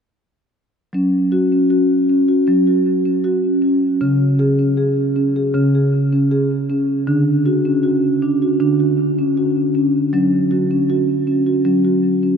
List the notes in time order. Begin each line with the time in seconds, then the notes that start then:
0.93 F#3 C#4
1.32 F#4
1.52 C#4
1.70 F#4
2.10 C#4
2.28 F#4
2.47 F#3 C#4
2.67 F#4
3.06 C#4
3.24 F#4
3.62 C#4
4.01 C#3 C#4
4.39 G#4
4.59 C#4
4.77 G#4
5.16 C#4
5.36 G#4
5.54 C#3 C#4
5.75 G#4
6.13 C#4
6.31 G#4
6.70 C#4
7.07 D3 D4
7.46 F#4
7.65 C#4
7.83 F#4
8.22 D4
8.42 F#4
8.60 D3 D4
8.80 F#4
9.19 C#4
9.37 F#4
9.75 C#4
10.13 F#3 C#4
10.51 F#4
10.71 C#4
10.90 F#4
11.27 C#4
11.47 F#4
11.65 F#3 C#4
11.85 F#4
12.23 C#4